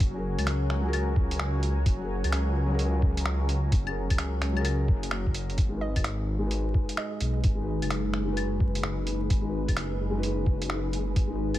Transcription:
Already playing: felt piano C#4 G#4 A#4, ambient pad F#4 C#5 G#5 A#5
0.00 detuned saw bass F#1, kick, closed hi-hat
0.10 felt piano F#3 C#4
0.16 felt piano G#4 A#4
0.38 detuned saw bass C#2, closed hi-hat, claves
0.47 finger snap, closed hi-hat
0.70 finger snap
0.81 felt piano F#3 C#4
0.86 felt piano G#4 A#4
0.93 closed hi-hat, claves
1.16 kick
1.31 closed hi-hat
1.39 finger snap
1.63 closed hi-hat
1.86 detuned saw bass F#1, kick, closed hi-hat
1.97 felt piano F#3 C#4
2.02 felt piano G#4 A#4
2.24 detuned saw bass C#2, closed hi-hat, claves
2.32 finger snap, closed hi-hat
2.66 felt piano F#3 C#4
2.72 felt piano G#4 A#4
2.79 closed hi-hat
3.02 kick
3.17 closed hi-hat
3.26 finger snap
3.49 closed hi-hat
3.72 detuned saw bass F#1, kick, closed hi-hat
3.83 felt piano F#3 C#4
3.87 felt piano G#4 A#4, claves
4.10 detuned saw bass C#2, kick, closed hi-hat, claves
4.18 finger snap, closed hi-hat
4.42 finger snap, closed hi-hat
4.52 felt piano F#3 C#4
4.57 felt piano G#4, claves
4.61 felt piano A#4
4.65 closed hi-hat, claves
4.88 detuned saw bass F#1, kick
5.03 closed hi-hat
5.11 finger snap
5.26 kick
5.34 closed hi-hat
5.50 closed hi-hat
5.58 detuned saw bass G#1, ambient pad G#3, synth texture G#4, kick, closed hi-hat
5.69 felt piano G#3 D#4
5.74 felt piano F#4 B4
5.81 synth pluck D#5
5.96 ambient pad D#4, kick, closed hi-hat, claves
6.03 ambient pad B4, finger snap, closed hi-hat
6.39 felt piano G#3 D#4
6.44 felt piano F#4 B4
6.51 closed hi-hat
6.74 kick
6.89 closed hi-hat
6.97 synth pluck D#5, finger snap
7.20 detuned saw bass B1, closed hi-hat
7.44 detuned saw bass G#1, kick, closed hi-hat
7.55 felt piano G#3 D#4
7.60 felt piano F#4 B4
7.82 detuned saw bass F#1, closed hi-hat, claves
7.90 finger snap, closed hi-hat
8.14 finger snap
8.25 felt piano G#3 D#4
8.30 felt piano F#4 B4
8.37 closed hi-hat, claves
8.60 kick
8.75 closed hi-hat
8.83 finger snap
9.07 closed hi-hat
9.30 detuned saw bass G#1, kick, closed hi-hat
9.41 felt piano G#3 D#4
9.47 felt piano F#4 B4
9.68 detuned saw bass F#1, kick, closed hi-hat, claves
9.77 finger snap, closed hi-hat
10.11 felt piano G#3 D#4
10.16 felt piano F#4 B4
10.23 closed hi-hat
10.46 kick
10.62 closed hi-hat
10.70 finger snap
10.93 closed hi-hat
11.16 detuned saw bass G#1, kick, closed hi-hat
11.27 felt piano G#3 D#4
11.33 felt piano F#4 B4
11.54 detuned saw bass F#1, closed hi-hat, claves

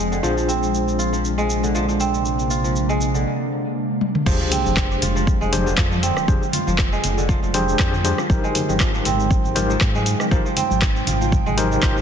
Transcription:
Already playing: analog synth bass F1, kora D3 F3 G#3 C4 F4, ambient pad F3 G#3 C4 G5, tine electric piano D4 G4 G#4 C5
0.12 kora D3, cabasa
0.23 analog synth bass A#1, ambient pad C3 A#3 D4, kora F3, tine electric piano D4 F4 G#4 C5, cabasa
0.37 kora F3, cabasa
0.48 kora C4, cabasa
0.63 cabasa
0.75 cabasa
0.88 cabasa
0.99 kora F4, cabasa
1.13 kora F3, cabasa
1.25 cabasa
1.38 kora G#3, cabasa
1.50 cabasa
1.63 kora D3, cabasa
1.75 kora F3, cabasa
1.88 kora F3, cabasa
2.00 kora C4, cabasa
2.14 cabasa
2.25 cabasa
2.39 cabasa
2.50 kora F4, cabasa
2.64 kora F3, cabasa
2.76 cabasa
2.89 kora G#3, cabasa
3.01 cabasa
3.14 kora D3, cabasa
4.01 high tom
4.15 mid tom
4.26 analog synth bass F1, ambient pad D3 G#3 F4 G5, kora F3, tine electric piano D4 G4 G#4 C5, kick, crash, sub drop, high conga, cabasa
4.40 kora F3, cabasa
4.51 kora C4, open hi-hat, muted conga, low conga, cabasa
4.65 analog synth bass F1, high conga, cabasa
4.77 kick, cross-stick, clap, cabasa
4.91 cabasa
5.02 analog synth bass F1, kora F4, open hi-hat, muted conga, low conga, cabasa
5.16 kora F3, cabasa
5.27 kick, high conga, cabasa
5.41 analog synth bass F1, kora G#3, muted conga, cabasa
5.52 tine electric piano D4 G4 G#4 C5, open hi-hat, high conga, low conga, cabasa
5.66 kora D3, cabasa
5.78 analog synth bass F2, kora F3, kick, cross-stick, clap, cabasa
5.91 kora F3, high conga, cabasa
6.03 kora C4, open hi-hat, cabasa
6.16 cross-stick, muted conga, cabasa
6.28 analog synth bass F1, tine electric piano D4 G4 G#4 C5, ambient pad G#4, kick, high conga, cabasa
6.43 cabasa
6.52 kora F4, open hi-hat, muted conga, low conga, cabasa
6.67 analog synth bass F1, kora F3, high conga, cabasa
6.78 kick, cross-stick, clap, cabasa
6.92 kora G#3, cabasa
7.04 analog synth bass F1, open hi-hat, muted conga, low conga, cabasa
7.18 kora D3, cabasa
7.29 kora F3, kick, high conga, low conga, cabasa
7.43 analog synth bass F1, kora F3, muted conga, cabasa
7.54 kora C4, tine electric piano D4 G4 G#4 C5, open hi-hat, high conga, cabasa
7.68 high conga, cabasa
7.79 analog synth bass F2, tine electric piano G4 C5, kick, cross-stick, clap, cabasa
7.93 low conga, cabasa
8.04 tine electric piano D4 G4 G#4 C5, kora F4, open hi-hat, high conga, cabasa
8.18 kora F3, cross-stick, muted conga, cabasa
8.30 analog synth bass G#1, ambient pad C3 D#4 G5, tine electric piano D#4 G4 A#4 C5, kick, high conga, cabasa
8.44 kora G#3, cabasa
8.55 open hi-hat, muted conga, low conga, cabasa
8.69 analog synth bass G#1, kora D#3, high conga, cabasa
8.80 kora F3, kick, cross-stick, clap, cabasa
8.94 kora F3, cabasa
9.05 analog synth bass G#1, kora C4, open hi-hat, muted conga, low conga, cabasa
9.20 cabasa
9.31 kick, high conga, cabasa
9.44 analog synth bass G#1, muted conga, cabasa
9.56 tine electric piano D#4 G4 A#4 C5, kora F4, open hi-hat, high conga, low conga, cabasa
9.70 kora F3, cabasa
9.81 analog synth bass G#2, kick, cross-stick, clap, muted conga, cabasa
9.95 kora G#3, high conga, cabasa
10.06 open hi-hat, cabasa
10.20 kora D#3, cross-stick, muted conga, cabasa
10.31 analog synth bass G#1, kora F3, tine electric piano D#4 G4 A#4 C5, kick, high conga, cabasa
10.45 kora F3, cabasa
10.57 kora C4, open hi-hat, muted conga, low conga, cabasa
10.70 analog synth bass G#1, high conga, cabasa
10.82 kick, cross-stick, clap, cabasa
10.96 cabasa
11.07 analog synth bass G#1, kora F4, open hi-hat, muted conga, low conga, cabasa
11.21 kora F3, cabasa
11.32 kick, high conga, low conga, cabasa
11.46 analog synth bass G#1, kora G#3, muted conga, cabasa
11.57 tine electric piano D#4 G4 A#4 C5, open hi-hat, high conga, cabasa
11.71 kora D#3, high conga, cabasa
11.83 analog synth bass G#1, kora F3, tine electric piano D#4 G4 A#4 C5, kick, cross-stick, clap, cabasa
11.96 kora F3, low conga, cabasa

